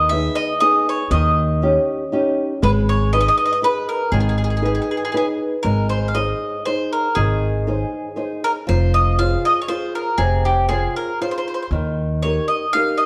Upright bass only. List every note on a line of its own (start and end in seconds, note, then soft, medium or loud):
0.00 0.27 D#2 medium
1.11 1.76 D#2 loud
2.63 3.27 G#1 loud
4.12 4.78 G#1 loud
5.65 6.31 G#1 medium
7.17 7.82 G#1 medium
8.69 9.34 F1 medium
10.18 10.85 F1 medium
11.71 12.38 D#2 medium